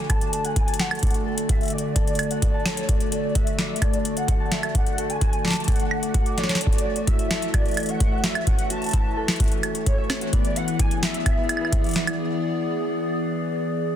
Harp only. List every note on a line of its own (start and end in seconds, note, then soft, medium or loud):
0.00 0.21 D4 medium
0.00 1.49 F#4 medium
0.00 1.71 D5 medium
0.10 0.91 A4 medium
0.21 1.02 D4 medium
0.45 2.05 F#5 medium
0.68 2.13 A5 medium
0.91 1.26 A4 medium
1.03 2.07 D4 medium
1.26 1.95 A4 medium
1.49 3.35 F#4 medium
1.73 3.57 D5 medium
1.96 2.77 A4 medium
2.07 2.88 D4 medium
2.31 3.91 F#5 medium
2.54 3.99 A5 medium
2.77 3.12 A4 medium
2.89 3.93 D4 medium
3.12 3.81 A4 medium
3.35 5.21 F#4 medium
3.58 5.43 D5 medium
3.82 4.63 A4 medium
3.93 4.74 D4 medium
4.17 5.77 F#5 medium
4.40 5.85 A5 medium
4.63 4.98 A4 medium
4.75 5.79 D4 medium
4.98 5.67 A4 medium
5.21 6.84 F#4 medium
5.45 6.67 D5 medium
5.68 6.49 A4 medium
5.79 6.02 D4 medium
6.03 6.37 D4 medium
6.26 6.67 D6 medium
6.38 6.67 D4 loud
6.49 7.30 A4 medium
6.61 7.65 C#4 medium
6.84 7.54 F#4 medium
7.07 8.93 E4 medium
7.31 9.16 A4 medium
7.54 8.35 F#4 medium
7.66 8.46 C#4 medium
7.89 9.74 C#5 medium
8.12 9.84 E5 medium
8.35 8.70 F#4 medium
8.47 9.51 C#4 medium
8.70 9.40 F#4 medium
8.93 10.56 E4 medium
9.17 11.09 A4 medium
9.40 10.21 F#4 medium
9.52 10.86 C#4 medium
9.75 10.86 C#5 medium
9.98 11.70 E5 medium
10.21 12.65 F#4 medium
10.33 11.37 B3 medium
10.56 11.26 E4 medium
10.80 13.59 D4 medium
11.03 13.30 G#4 medium
11.26 12.07 E4 medium
11.38 13.96 B3 medium
11.61 13.66 B4 medium
11.84 13.69 D5 medium
12.07 13.96 E4 medium